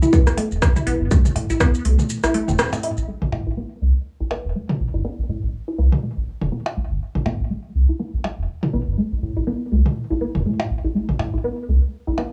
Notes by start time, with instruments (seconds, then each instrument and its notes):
0.02 synth pluck E4, mid tom, shaker
0.13 synth pluck B3, kick, shaker
0.27 analog synth bass A1, cross-stick, shaker
0.37 synth pluck A3, open hi-hat, percussion blips
0.52 analog synth bass E1, shaker
0.62 kick, cross-stick, shaker
0.76 synth pluck E4, mid tom, shaker
0.87 analog synth bass A1, synth pluck B3, open hi-hat
1.01 analog synth bass G1
1.11 synth pluck A3, kick, shaker
1.25 analog synth bass A1, mid tom, shaker
1.36 analog synth bass A2, open hi-hat, percussion blips
1.50 analog synth bass A1, synth pluck E4, open hi-hat, shaker
1.60 synth pluck B3, kick, cross-stick, shaker
1.74 shaker
1.85 analog synth bass C2, synth pluck A3, open hi-hat
1.99 mid tom, shaker
2.10 shaker
2.24 analog synth bass A1, synth pluck E4, cross-stick, open hi-hat, shaker
2.34 synth pluck A3, open hi-hat
2.48 analog synth bass E1, synth pluck C4, mid tom, shaker
2.59 synth pluck C4, cross-stick, shaker
2.73 analog synth bass A2, percussion blips, shaker
2.83 synth pluck E4, open hi-hat
2.97 analog synth bass A1, shaker
3.08 synth pluck A3
3.22 analog synth bass A1, mid tom
3.32 analog synth bass A2, percussion blips
3.46 analog synth bass A1, synth pluck E4
3.57 synth pluck B3
3.82 analog synth bass C2, synth pluck A3
4.20 analog synth bass A1, synth pluck E4
4.31 synth pluck B3, percussion blips
4.45 analog synth bass E1
4.56 synth pluck A3
4.69 mid tom
4.80 analog synth bass A1
4.94 analog synth bass G1, synth pluck E4
5.05 synth pluck B3
5.19 analog synth bass A1
5.29 analog synth bass A2, synth pluck A3
5.43 analog synth bass A1
5.68 synth pluck E4
5.78 analog synth bass C2, synth pluck B3
5.92 mid tom
6.03 synth pluck A3
6.17 analog synth bass A1
6.42 analog synth bass E1, synth pluck E4, mid tom
6.52 synth pluck B3
6.66 percussion blips
6.77 analog synth bass A1, synth pluck A3
6.91 analog synth bass G1
7.15 analog synth bass A1, synth pluck E4, mid tom
7.26 analog synth bass A2, synth pluck B3, percussion blips
7.40 analog synth bass A1
7.50 synth pluck A3
7.75 analog synth bass C2
7.89 synth pluck E4
8.00 synth pluck B3
8.14 analog synth bass A1
8.24 synth pluck A3, percussion blips
8.38 analog synth bass E1
8.63 synth pluck E4, mid tom
8.73 analog synth bass A1, synth pluck B3
8.87 analog synth bass G1
8.98 synth pluck A3
9.12 analog synth bass A1
9.23 analog synth bass A2
9.37 analog synth bass A1, synth pluck E4
9.47 synth pluck B3
9.72 analog synth bass C2, synth pluck A3
9.86 mid tom
10.10 analog synth bass A1, synth pluck E4
10.21 synth pluck B3
10.35 analog synth bass E1, mid tom
10.46 analog synth bass A2, synth pluck A3
10.60 percussion blips
10.70 analog synth bass A1
10.84 analog synth bass A1, synth pluck E4
10.95 synth pluck A3
11.09 analog synth bass A1, mid tom
11.19 analog synth bass A2, percussion blips
11.33 analog synth bass A1, synth pluck E4
11.44 synth pluck B3
11.69 analog synth bass C2, synth pluck A3
12.07 analog synth bass A1, synth pluck E4
12.18 synth pluck B3, percussion blips